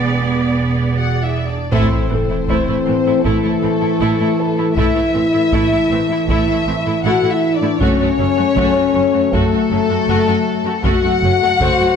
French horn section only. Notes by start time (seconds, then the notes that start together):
0.97 F#4
1.22 E4
1.47 D4
1.72 C4
3.24 A3
4.76 E4
6.29 E4
7.04 F#4
7.31 E4
7.55 D4
7.80 C#4
9.32 A3
10.84 F#4